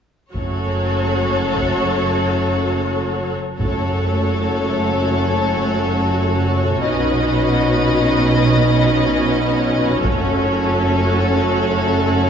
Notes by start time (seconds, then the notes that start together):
0.33 F#1 F#2 F#3 A3 C#4 F#4 A4 C#5, taiko
1.56 taiko
3.59 F#1 F#2 A3 C#4 F#4 A4 C#5, taiko
6.81 B1 B2 C#4 D#4 B4 D#5
10.02 F#1 F#2 A3 C#4 F#4 A4 C#5, taiko